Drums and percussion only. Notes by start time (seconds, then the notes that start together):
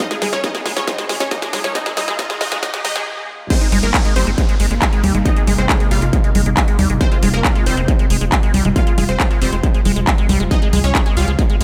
0.11 snare, closed hi-hat
0.22 snare, open hi-hat, high conga
0.33 snare, closed hi-hat
0.44 kick, snare, closed hi-hat
0.55 snare, closed hi-hat
0.66 snare, open hi-hat
0.77 snare, closed hi-hat
0.88 kick, snare, closed hi-hat
0.98 snare, closed hi-hat
1.09 snare, open hi-hat
1.20 snare, closed hi-hat
1.31 kick, snare, closed hi-hat
1.42 snare, closed hi-hat
1.53 snare, open hi-hat, high conga
1.64 snare, closed hi-hat, high conga
1.75 kick, snare, closed hi-hat
1.86 snare, closed hi-hat
1.97 snare, open hi-hat, high conga
2.08 snare, closed hi-hat
2.19 kick, snare, closed hi-hat
2.30 snare, closed hi-hat
2.41 snare, open hi-hat
2.52 snare, closed hi-hat
2.63 kick, snare, closed hi-hat
2.74 snare, closed hi-hat
2.85 snare, open hi-hat, high conga
2.96 snare, closed hi-hat
3.50 kick, closed hi-hat, crash
3.61 closed hi-hat
3.72 open hi-hat, high conga
3.83 closed hi-hat
3.94 kick, clap, closed hi-hat
4.05 closed hi-hat
4.16 open hi-hat
4.27 closed hi-hat
4.38 kick, closed hi-hat
4.49 closed hi-hat
4.60 open hi-hat
4.71 closed hi-hat
4.82 kick, clap, closed hi-hat
4.93 closed hi-hat
5.04 open hi-hat, high conga
5.15 closed hi-hat, high conga
5.26 kick, closed hi-hat
5.36 closed hi-hat
5.47 open hi-hat, high conga
5.58 closed hi-hat
5.69 kick, clap, closed hi-hat
5.80 closed hi-hat
5.91 open hi-hat
6.02 closed hi-hat
6.13 kick, closed hi-hat
6.24 closed hi-hat
6.35 open hi-hat, high conga
6.46 closed hi-hat
6.57 kick, clap, closed hi-hat
6.68 closed hi-hat
6.79 open hi-hat, high conga
6.90 closed hi-hat
7.01 kick, closed hi-hat
7.12 closed hi-hat
7.23 open hi-hat, high conga
7.34 closed hi-hat
7.44 kick, clap, closed hi-hat
7.55 closed hi-hat
7.66 open hi-hat
7.77 closed hi-hat
7.88 kick, closed hi-hat
7.99 closed hi-hat
8.10 open hi-hat
8.21 closed hi-hat
8.32 kick, clap, closed hi-hat
8.43 closed hi-hat
8.54 open hi-hat, high conga
8.65 closed hi-hat, high conga
8.76 kick, closed hi-hat
8.87 closed hi-hat
8.98 open hi-hat, high conga
9.09 closed hi-hat
9.20 kick, clap, closed hi-hat
9.31 closed hi-hat
9.42 open hi-hat
9.53 closed hi-hat
9.63 kick, closed hi-hat
9.74 closed hi-hat
9.85 open hi-hat, high conga
9.96 closed hi-hat
10.07 kick, clap, closed hi-hat
10.18 closed hi-hat
10.29 open hi-hat, high conga
10.40 closed hi-hat
10.51 kick, closed hi-hat
10.62 closed hi-hat
10.73 open hi-hat, high conga
10.84 closed hi-hat
10.95 kick, clap, closed hi-hat
11.06 closed hi-hat
11.17 open hi-hat
11.28 closed hi-hat
11.39 kick, closed hi-hat
11.50 closed hi-hat
11.61 open hi-hat